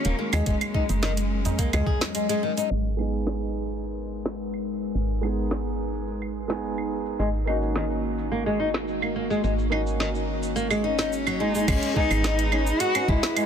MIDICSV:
0, 0, Header, 1, 8, 480
1, 0, Start_track
1, 0, Key_signature, 5, "minor"
1, 0, Tempo, 560748
1, 399, Time_signature, 4, 2, 24, 8
1, 11520, End_track
2, 0, Start_track
2, 0, Title_t, "Ambient pad"
2, 0, Program_c, 0, 92
2, 0, Note_on_c, 0, 51, 90
2, 0, Note_on_c, 0, 58, 76
2, 0, Note_on_c, 0, 63, 75
2, 0, Note_on_c, 0, 66, 96
2, 380, Note_off_c, 0, 51, 0
2, 381, Note_off_c, 0, 63, 0
2, 381, Note_off_c, 0, 66, 0
2, 382, Note_off_c, 0, 58, 0
2, 401, Note_on_c, 0, 54, 80
2, 401, Note_on_c, 0, 56, 78
2, 401, Note_on_c, 0, 61, 95
2, 2301, Note_off_c, 0, 54, 0
2, 2301, Note_off_c, 0, 56, 0
2, 2301, Note_off_c, 0, 61, 0
2, 2316, Note_on_c, 0, 70, 71
2, 2316, Note_on_c, 0, 71, 90
2, 2317, Note_on_c, 0, 63, 75
2, 2318, Note_on_c, 0, 56, 76
2, 6123, Note_off_c, 0, 70, 0
2, 6123, Note_off_c, 0, 71, 0
2, 6124, Note_off_c, 0, 56, 0
2, 6160, Note_on_c, 0, 58, 73
2, 6160, Note_on_c, 0, 66, 86
2, 6161, Note_on_c, 0, 51, 85
2, 9964, Note_off_c, 0, 63, 0
2, 9965, Note_off_c, 0, 58, 0
2, 9965, Note_off_c, 0, 66, 0
2, 9966, Note_off_c, 0, 51, 0
2, 10000, Note_on_c, 0, 71, 81
2, 10001, Note_on_c, 0, 75, 84
2, 10001, Note_on_c, 0, 83, 96
2, 10002, Note_on_c, 0, 68, 87
2, 11520, Note_off_c, 0, 68, 0
2, 11520, Note_off_c, 0, 71, 0
2, 11520, Note_off_c, 0, 75, 0
2, 11520, Note_off_c, 0, 83, 0
2, 11520, End_track
3, 0, Start_track
3, 0, Title_t, "Cello"
3, 0, Program_c, 1, 42
3, 0, Note_on_c, 1, 61, 112
3, 155, Note_off_c, 1, 61, 0
3, 161, Note_on_c, 1, 56, 98
3, 2046, Note_off_c, 1, 56, 0
3, 9279, Note_on_c, 1, 61, 86
3, 9763, Note_on_c, 1, 63, 84
3, 9776, Note_off_c, 1, 61, 0
3, 9997, Note_on_c, 1, 61, 97
3, 10009, Note_off_c, 1, 63, 0
3, 10233, Note_off_c, 1, 61, 0
3, 10239, Note_on_c, 1, 63, 110
3, 10960, Note_on_c, 1, 66, 114
3, 10973, Note_off_c, 1, 63, 0
3, 11202, Note_on_c, 1, 64, 100
3, 11215, Note_off_c, 1, 66, 0
3, 11520, Note_off_c, 1, 64, 0
3, 11520, End_track
4, 0, Start_track
4, 0, Title_t, "Felt piano"
4, 0, Program_c, 2, 0
4, 2540, Note_on_c, 2, 56, 62
4, 2552, Note_on_c, 2, 59, 52
4, 2563, Note_on_c, 2, 63, 54
4, 2575, Note_on_c, 2, 68, 66
4, 4442, Note_off_c, 2, 56, 0
4, 4448, Note_off_c, 2, 59, 0
4, 4453, Note_off_c, 2, 63, 0
4, 4460, Note_off_c, 2, 68, 0
4, 4463, Note_on_c, 2, 56, 64
4, 4473, Note_on_c, 2, 59, 58
4, 4485, Note_on_c, 2, 63, 57
4, 4496, Note_on_c, 2, 68, 75
4, 5526, Note_off_c, 2, 56, 0
4, 5531, Note_off_c, 2, 59, 0
4, 5537, Note_off_c, 2, 63, 0
4, 5543, Note_off_c, 2, 68, 0
4, 5546, Note_on_c, 2, 56, 83
4, 5558, Note_on_c, 2, 59, 75
4, 5569, Note_on_c, 2, 63, 75
4, 5581, Note_on_c, 2, 68, 90
4, 6136, Note_off_c, 2, 56, 0
4, 6142, Note_off_c, 2, 59, 0
4, 6148, Note_off_c, 2, 63, 0
4, 6154, Note_off_c, 2, 68, 0
4, 6380, Note_on_c, 2, 58, 58
4, 6392, Note_on_c, 2, 61, 57
4, 6404, Note_on_c, 2, 63, 56
4, 6414, Note_on_c, 2, 66, 67
4, 8282, Note_off_c, 2, 58, 0
4, 8288, Note_off_c, 2, 61, 0
4, 8294, Note_off_c, 2, 63, 0
4, 8299, Note_off_c, 2, 66, 0
4, 8301, Note_on_c, 2, 58, 66
4, 8312, Note_on_c, 2, 61, 57
4, 8324, Note_on_c, 2, 63, 60
4, 8336, Note_on_c, 2, 66, 73
4, 9365, Note_off_c, 2, 58, 0
4, 9371, Note_off_c, 2, 61, 0
4, 9377, Note_off_c, 2, 63, 0
4, 9383, Note_off_c, 2, 66, 0
4, 10222, Note_on_c, 2, 56, 73
4, 10234, Note_on_c, 2, 59, 66
4, 10245, Note_on_c, 2, 75, 65
4, 10257, Note_on_c, 2, 68, 72
4, 11520, Note_off_c, 2, 56, 0
4, 11520, Note_off_c, 2, 59, 0
4, 11520, Note_off_c, 2, 68, 0
4, 11520, Note_off_c, 2, 75, 0
4, 11520, End_track
5, 0, Start_track
5, 0, Title_t, "Nylon-string guitar"
5, 0, Program_c, 3, 24
5, 45, Note_on_c, 3, 58, 69
5, 148, Note_off_c, 3, 58, 0
5, 159, Note_on_c, 3, 58, 71
5, 278, Note_off_c, 3, 58, 0
5, 285, Note_on_c, 3, 56, 104
5, 389, Note_off_c, 3, 56, 0
5, 399, Note_on_c, 3, 56, 100
5, 470, Note_off_c, 3, 56, 0
5, 637, Note_on_c, 3, 63, 94
5, 709, Note_off_c, 3, 63, 0
5, 877, Note_on_c, 3, 51, 98
5, 950, Note_off_c, 3, 51, 0
5, 1357, Note_on_c, 3, 58, 97
5, 1471, Note_off_c, 3, 58, 0
5, 1484, Note_on_c, 3, 56, 103
5, 1587, Note_off_c, 3, 56, 0
5, 1598, Note_on_c, 3, 68, 72
5, 1718, Note_off_c, 3, 68, 0
5, 1837, Note_on_c, 3, 56, 78
5, 1952, Note_off_c, 3, 56, 0
5, 1962, Note_on_c, 3, 56, 94
5, 2072, Note_off_c, 3, 56, 0
5, 2079, Note_on_c, 3, 51, 72
5, 2151, Note_off_c, 3, 51, 0
5, 2203, Note_on_c, 3, 63, 78
5, 2307, Note_off_c, 3, 63, 0
5, 6158, Note_on_c, 3, 56, 88
5, 6230, Note_off_c, 3, 56, 0
5, 6399, Note_on_c, 3, 63, 89
5, 6470, Note_off_c, 3, 63, 0
5, 6638, Note_on_c, 3, 51, 84
5, 6710, Note_off_c, 3, 51, 0
5, 7118, Note_on_c, 3, 58, 88
5, 7231, Note_off_c, 3, 58, 0
5, 7244, Note_on_c, 3, 56, 89
5, 7347, Note_off_c, 3, 56, 0
5, 7358, Note_on_c, 3, 63, 87
5, 7430, Note_off_c, 3, 63, 0
5, 7725, Note_on_c, 3, 58, 65
5, 7828, Note_off_c, 3, 58, 0
5, 7839, Note_on_c, 3, 58, 66
5, 7958, Note_off_c, 3, 58, 0
5, 7964, Note_on_c, 3, 56, 91
5, 8069, Note_off_c, 3, 56, 0
5, 8079, Note_on_c, 3, 56, 88
5, 8150, Note_off_c, 3, 56, 0
5, 8318, Note_on_c, 3, 63, 88
5, 8390, Note_off_c, 3, 63, 0
5, 8559, Note_on_c, 3, 51, 84
5, 8630, Note_off_c, 3, 51, 0
5, 9038, Note_on_c, 3, 58, 93
5, 9151, Note_off_c, 3, 58, 0
5, 9163, Note_on_c, 3, 56, 90
5, 9267, Note_off_c, 3, 56, 0
5, 9279, Note_on_c, 3, 63, 96
5, 9392, Note_off_c, 3, 63, 0
5, 9404, Note_on_c, 3, 63, 91
5, 9508, Note_off_c, 3, 63, 0
5, 9646, Note_on_c, 3, 54, 93
5, 9749, Note_off_c, 3, 54, 0
5, 9759, Note_on_c, 3, 56, 92
5, 9876, Note_off_c, 3, 56, 0
5, 9886, Note_on_c, 3, 56, 71
5, 9989, Note_off_c, 3, 56, 0
5, 10239, Note_on_c, 3, 56, 93
5, 10358, Note_off_c, 3, 56, 0
5, 10481, Note_on_c, 3, 63, 76
5, 10551, Note_off_c, 3, 63, 0
5, 10720, Note_on_c, 3, 61, 77
5, 10838, Note_off_c, 3, 61, 0
5, 10960, Note_on_c, 3, 66, 84
5, 11072, Note_off_c, 3, 66, 0
5, 11086, Note_on_c, 3, 61, 76
5, 11151, Note_off_c, 3, 61, 0
5, 11200, Note_on_c, 3, 56, 96
5, 11318, Note_off_c, 3, 56, 0
5, 11439, Note_on_c, 3, 56, 83
5, 11520, Note_off_c, 3, 56, 0
5, 11520, End_track
6, 0, Start_track
6, 0, Title_t, "FM bass"
6, 0, Program_c, 4, 39
6, 45, Note_on_c, 4, 27, 81
6, 119, Note_off_c, 4, 27, 0
6, 284, Note_on_c, 4, 39, 105
6, 358, Note_off_c, 4, 39, 0
6, 398, Note_on_c, 4, 30, 91
6, 479, Note_off_c, 4, 30, 0
6, 766, Note_on_c, 4, 30, 82
6, 1295, Note_off_c, 4, 30, 0
6, 1485, Note_on_c, 4, 37, 100
6, 1559, Note_off_c, 4, 37, 0
6, 2319, Note_on_c, 4, 32, 79
6, 4216, Note_off_c, 4, 32, 0
6, 4238, Note_on_c, 4, 32, 76
6, 6136, Note_off_c, 4, 32, 0
6, 6160, Note_on_c, 4, 32, 79
6, 8056, Note_off_c, 4, 32, 0
6, 8081, Note_on_c, 4, 32, 86
6, 9977, Note_off_c, 4, 32, 0
6, 9998, Note_on_c, 4, 32, 97
6, 10080, Note_off_c, 4, 32, 0
6, 10365, Note_on_c, 4, 32, 86
6, 10894, Note_off_c, 4, 32, 0
6, 11199, Note_on_c, 4, 32, 98
6, 11280, Note_off_c, 4, 32, 0
6, 11520, End_track
7, 0, Start_track
7, 0, Title_t, "Tabla"
7, 50, Note_on_c, 9, 63, 53
7, 135, Note_off_c, 9, 63, 0
7, 288, Note_on_c, 9, 63, 62
7, 374, Note_off_c, 9, 63, 0
7, 767, Note_on_c, 9, 60, 63
7, 853, Note_off_c, 9, 60, 0
7, 1244, Note_on_c, 9, 64, 84
7, 1246, Note_on_c, 9, 63, 36
7, 1247, Note_on_c, 9, 60, 61
7, 1330, Note_off_c, 9, 64, 0
7, 1332, Note_off_c, 9, 63, 0
7, 1333, Note_off_c, 9, 60, 0
7, 1362, Note_on_c, 9, 60, 68
7, 1448, Note_off_c, 9, 60, 0
7, 1490, Note_on_c, 9, 64, 82
7, 1575, Note_off_c, 9, 64, 0
7, 1601, Note_on_c, 9, 60, 58
7, 1687, Note_off_c, 9, 60, 0
7, 11520, End_track
8, 0, Start_track
8, 0, Title_t, "Drums"
8, 41, Note_on_c, 9, 42, 43
8, 42, Note_on_c, 9, 82, 31
8, 126, Note_off_c, 9, 42, 0
8, 128, Note_off_c, 9, 82, 0
8, 280, Note_on_c, 9, 42, 34
8, 280, Note_on_c, 9, 75, 81
8, 282, Note_on_c, 9, 82, 61
8, 366, Note_off_c, 9, 42, 0
8, 366, Note_off_c, 9, 75, 0
8, 367, Note_off_c, 9, 82, 0
8, 396, Note_on_c, 9, 42, 65
8, 397, Note_on_c, 9, 36, 117
8, 398, Note_on_c, 9, 82, 54
8, 482, Note_off_c, 9, 42, 0
8, 483, Note_off_c, 9, 36, 0
8, 484, Note_off_c, 9, 82, 0
8, 524, Note_on_c, 9, 42, 40
8, 524, Note_on_c, 9, 75, 61
8, 525, Note_on_c, 9, 82, 30
8, 609, Note_off_c, 9, 42, 0
8, 609, Note_off_c, 9, 75, 0
8, 611, Note_off_c, 9, 82, 0
8, 637, Note_on_c, 9, 36, 62
8, 723, Note_off_c, 9, 36, 0
8, 764, Note_on_c, 9, 42, 32
8, 765, Note_on_c, 9, 82, 66
8, 849, Note_off_c, 9, 42, 0
8, 851, Note_off_c, 9, 82, 0
8, 879, Note_on_c, 9, 38, 73
8, 879, Note_on_c, 9, 42, 62
8, 881, Note_on_c, 9, 82, 48
8, 965, Note_off_c, 9, 38, 0
8, 965, Note_off_c, 9, 42, 0
8, 966, Note_off_c, 9, 82, 0
8, 1004, Note_on_c, 9, 42, 47
8, 1005, Note_on_c, 9, 82, 32
8, 1089, Note_off_c, 9, 42, 0
8, 1091, Note_off_c, 9, 82, 0
8, 1243, Note_on_c, 9, 42, 30
8, 1244, Note_on_c, 9, 82, 63
8, 1328, Note_off_c, 9, 42, 0
8, 1330, Note_off_c, 9, 82, 0
8, 1357, Note_on_c, 9, 36, 59
8, 1359, Note_on_c, 9, 42, 66
8, 1360, Note_on_c, 9, 82, 51
8, 1443, Note_off_c, 9, 36, 0
8, 1444, Note_off_c, 9, 42, 0
8, 1446, Note_off_c, 9, 82, 0
8, 1483, Note_on_c, 9, 42, 44
8, 1483, Note_on_c, 9, 75, 58
8, 1484, Note_on_c, 9, 82, 30
8, 1568, Note_off_c, 9, 42, 0
8, 1568, Note_off_c, 9, 75, 0
8, 1570, Note_off_c, 9, 82, 0
8, 1597, Note_on_c, 9, 36, 99
8, 1682, Note_off_c, 9, 36, 0
8, 1724, Note_on_c, 9, 38, 80
8, 1724, Note_on_c, 9, 42, 32
8, 1725, Note_on_c, 9, 82, 68
8, 1809, Note_off_c, 9, 38, 0
8, 1809, Note_off_c, 9, 42, 0
8, 1811, Note_off_c, 9, 82, 0
8, 1838, Note_on_c, 9, 42, 64
8, 1839, Note_on_c, 9, 82, 53
8, 1923, Note_off_c, 9, 42, 0
8, 1925, Note_off_c, 9, 82, 0
8, 1964, Note_on_c, 9, 42, 45
8, 1966, Note_on_c, 9, 82, 32
8, 2050, Note_off_c, 9, 42, 0
8, 2051, Note_off_c, 9, 82, 0
8, 2204, Note_on_c, 9, 42, 32
8, 2206, Note_on_c, 9, 82, 66
8, 2290, Note_off_c, 9, 42, 0
8, 2291, Note_off_c, 9, 82, 0
8, 2557, Note_on_c, 9, 75, 69
8, 2643, Note_off_c, 9, 75, 0
8, 2684, Note_on_c, 9, 82, 54
8, 2769, Note_off_c, 9, 82, 0
8, 2797, Note_on_c, 9, 38, 64
8, 2799, Note_on_c, 9, 82, 47
8, 2883, Note_off_c, 9, 38, 0
8, 2884, Note_off_c, 9, 82, 0
8, 2924, Note_on_c, 9, 82, 29
8, 3009, Note_off_c, 9, 82, 0
8, 3164, Note_on_c, 9, 82, 59
8, 3249, Note_off_c, 9, 82, 0
8, 3279, Note_on_c, 9, 82, 50
8, 3365, Note_off_c, 9, 82, 0
8, 3404, Note_on_c, 9, 82, 29
8, 3489, Note_off_c, 9, 82, 0
8, 3643, Note_on_c, 9, 38, 72
8, 3644, Note_on_c, 9, 82, 61
8, 3728, Note_off_c, 9, 38, 0
8, 3730, Note_off_c, 9, 82, 0
8, 3759, Note_on_c, 9, 82, 48
8, 3845, Note_off_c, 9, 82, 0
8, 3883, Note_on_c, 9, 75, 53
8, 3885, Note_on_c, 9, 82, 29
8, 3969, Note_off_c, 9, 75, 0
8, 3970, Note_off_c, 9, 82, 0
8, 4123, Note_on_c, 9, 82, 57
8, 4209, Note_off_c, 9, 82, 0
8, 4239, Note_on_c, 9, 82, 53
8, 4324, Note_off_c, 9, 82, 0
8, 4364, Note_on_c, 9, 82, 29
8, 4449, Note_off_c, 9, 82, 0
8, 4477, Note_on_c, 9, 75, 63
8, 4563, Note_off_c, 9, 75, 0
8, 4605, Note_on_c, 9, 82, 61
8, 4691, Note_off_c, 9, 82, 0
8, 4718, Note_on_c, 9, 38, 68
8, 4803, Note_off_c, 9, 38, 0
8, 4844, Note_on_c, 9, 82, 30
8, 4929, Note_off_c, 9, 82, 0
8, 5083, Note_on_c, 9, 82, 59
8, 5169, Note_off_c, 9, 82, 0
8, 5198, Note_on_c, 9, 82, 50
8, 5284, Note_off_c, 9, 82, 0
8, 5323, Note_on_c, 9, 75, 60
8, 5324, Note_on_c, 9, 82, 28
8, 5408, Note_off_c, 9, 75, 0
8, 5410, Note_off_c, 9, 82, 0
8, 5562, Note_on_c, 9, 38, 72
8, 5564, Note_on_c, 9, 82, 61
8, 5648, Note_off_c, 9, 38, 0
8, 5649, Note_off_c, 9, 82, 0
8, 5679, Note_on_c, 9, 82, 48
8, 5765, Note_off_c, 9, 82, 0
8, 5804, Note_on_c, 9, 75, 50
8, 5805, Note_on_c, 9, 82, 32
8, 5889, Note_off_c, 9, 75, 0
8, 5891, Note_off_c, 9, 82, 0
8, 6044, Note_on_c, 9, 82, 65
8, 6129, Note_off_c, 9, 82, 0
8, 6160, Note_on_c, 9, 82, 54
8, 6245, Note_off_c, 9, 82, 0
8, 6286, Note_on_c, 9, 82, 29
8, 6372, Note_off_c, 9, 82, 0
8, 6398, Note_on_c, 9, 75, 64
8, 6484, Note_off_c, 9, 75, 0
8, 6525, Note_on_c, 9, 82, 58
8, 6611, Note_off_c, 9, 82, 0
8, 6639, Note_on_c, 9, 38, 66
8, 6641, Note_on_c, 9, 82, 48
8, 6725, Note_off_c, 9, 38, 0
8, 6726, Note_off_c, 9, 82, 0
8, 6766, Note_on_c, 9, 82, 31
8, 6852, Note_off_c, 9, 82, 0
8, 7006, Note_on_c, 9, 82, 60
8, 7092, Note_off_c, 9, 82, 0
8, 7121, Note_on_c, 9, 82, 50
8, 7206, Note_off_c, 9, 82, 0
8, 7245, Note_on_c, 9, 82, 30
8, 7331, Note_off_c, 9, 82, 0
8, 7484, Note_on_c, 9, 38, 70
8, 7486, Note_on_c, 9, 82, 62
8, 7570, Note_off_c, 9, 38, 0
8, 7571, Note_off_c, 9, 82, 0
8, 7600, Note_on_c, 9, 82, 51
8, 7686, Note_off_c, 9, 82, 0
8, 7724, Note_on_c, 9, 75, 53
8, 7725, Note_on_c, 9, 82, 32
8, 7810, Note_off_c, 9, 75, 0
8, 7811, Note_off_c, 9, 82, 0
8, 7967, Note_on_c, 9, 82, 63
8, 8053, Note_off_c, 9, 82, 0
8, 8081, Note_on_c, 9, 82, 54
8, 8167, Note_off_c, 9, 82, 0
8, 8206, Note_on_c, 9, 82, 28
8, 8292, Note_off_c, 9, 82, 0
8, 8321, Note_on_c, 9, 75, 70
8, 8406, Note_off_c, 9, 75, 0
8, 8448, Note_on_c, 9, 82, 62
8, 8534, Note_off_c, 9, 82, 0
8, 8562, Note_on_c, 9, 38, 65
8, 8564, Note_on_c, 9, 82, 50
8, 8648, Note_off_c, 9, 38, 0
8, 8649, Note_off_c, 9, 82, 0
8, 8688, Note_on_c, 9, 82, 31
8, 8774, Note_off_c, 9, 82, 0
8, 8928, Note_on_c, 9, 82, 63
8, 9013, Note_off_c, 9, 82, 0
8, 9042, Note_on_c, 9, 82, 51
8, 9127, Note_off_c, 9, 82, 0
8, 9163, Note_on_c, 9, 75, 69
8, 9165, Note_on_c, 9, 82, 30
8, 9249, Note_off_c, 9, 75, 0
8, 9251, Note_off_c, 9, 82, 0
8, 9404, Note_on_c, 9, 38, 67
8, 9406, Note_on_c, 9, 82, 64
8, 9490, Note_off_c, 9, 38, 0
8, 9492, Note_off_c, 9, 82, 0
8, 9522, Note_on_c, 9, 82, 50
8, 9608, Note_off_c, 9, 82, 0
8, 9644, Note_on_c, 9, 75, 54
8, 9646, Note_on_c, 9, 82, 32
8, 9730, Note_off_c, 9, 75, 0
8, 9732, Note_off_c, 9, 82, 0
8, 9886, Note_on_c, 9, 82, 62
8, 9972, Note_off_c, 9, 82, 0
8, 9998, Note_on_c, 9, 36, 115
8, 9999, Note_on_c, 9, 42, 69
8, 9999, Note_on_c, 9, 49, 95
8, 9999, Note_on_c, 9, 75, 82
8, 10000, Note_on_c, 9, 82, 57
8, 10084, Note_off_c, 9, 36, 0
8, 10085, Note_off_c, 9, 42, 0
8, 10085, Note_off_c, 9, 49, 0
8, 10085, Note_off_c, 9, 75, 0
8, 10086, Note_off_c, 9, 82, 0
8, 10123, Note_on_c, 9, 42, 45
8, 10125, Note_on_c, 9, 82, 34
8, 10209, Note_off_c, 9, 42, 0
8, 10211, Note_off_c, 9, 82, 0
8, 10239, Note_on_c, 9, 36, 61
8, 10324, Note_off_c, 9, 36, 0
8, 10364, Note_on_c, 9, 75, 77
8, 10365, Note_on_c, 9, 82, 65
8, 10449, Note_off_c, 9, 75, 0
8, 10451, Note_off_c, 9, 82, 0
8, 10480, Note_on_c, 9, 38, 73
8, 10480, Note_on_c, 9, 42, 65
8, 10481, Note_on_c, 9, 82, 53
8, 10565, Note_off_c, 9, 38, 0
8, 10565, Note_off_c, 9, 42, 0
8, 10567, Note_off_c, 9, 82, 0
8, 10604, Note_on_c, 9, 42, 47
8, 10606, Note_on_c, 9, 82, 33
8, 10690, Note_off_c, 9, 42, 0
8, 10691, Note_off_c, 9, 82, 0
8, 10718, Note_on_c, 9, 75, 73
8, 10803, Note_off_c, 9, 75, 0
8, 10844, Note_on_c, 9, 82, 67
8, 10929, Note_off_c, 9, 82, 0
8, 10958, Note_on_c, 9, 42, 69
8, 10960, Note_on_c, 9, 82, 56
8, 11044, Note_off_c, 9, 42, 0
8, 11045, Note_off_c, 9, 82, 0
8, 11085, Note_on_c, 9, 42, 43
8, 11085, Note_on_c, 9, 75, 74
8, 11086, Note_on_c, 9, 82, 31
8, 11170, Note_off_c, 9, 42, 0
8, 11170, Note_off_c, 9, 75, 0
8, 11172, Note_off_c, 9, 82, 0
8, 11198, Note_on_c, 9, 36, 98
8, 11284, Note_off_c, 9, 36, 0
8, 11326, Note_on_c, 9, 38, 81
8, 11326, Note_on_c, 9, 42, 34
8, 11327, Note_on_c, 9, 82, 64
8, 11412, Note_off_c, 9, 38, 0
8, 11412, Note_off_c, 9, 42, 0
8, 11413, Note_off_c, 9, 82, 0
8, 11441, Note_on_c, 9, 42, 67
8, 11441, Note_on_c, 9, 75, 80
8, 11442, Note_on_c, 9, 82, 51
8, 11520, Note_off_c, 9, 42, 0
8, 11520, Note_off_c, 9, 75, 0
8, 11520, Note_off_c, 9, 82, 0
8, 11520, End_track
0, 0, End_of_file